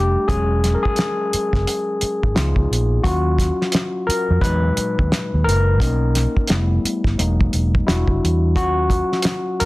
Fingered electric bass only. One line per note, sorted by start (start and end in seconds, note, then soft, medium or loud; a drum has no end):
0.00 0.15 F1 medium
0.29 0.74 E1 loud
1.34 muted fingered electric bass stroke soft
1.54 1.64 F#1 medium
2.02 muted fingered electric bass stroke soft
2.24 2.34 G#1 medium
2.37 2.54 C#2 medium
2.57 2.67 C#2 medium
2.71 2.98 A#1 medium
3.05 3.50 D#2 loud
4.09 muted fingered electric bass stroke soft
4.30 4.40 F2 medium
4.42 4.70 E2 loud
4.77 muted fingered electric bass stroke soft
5.00 5.09 D#2 medium
5.34 5.43 D#2 medium
5.47 5.81 F#1 loud
5.81 6.26 B1 loud
6.51 6.78 F1 loud
6.84 muted fingered electric bass stroke soft
7.05 7.15 G1 medium
7.19 7.46 E1 loud
7.54 7.81 E1 medium
7.88 8.05 E1 loud
8.08 8.19 F#1 medium
8.24 8.56 E2 medium
8.56 9.01 D#2 loud
9.61 muted fingered electric bass stroke soft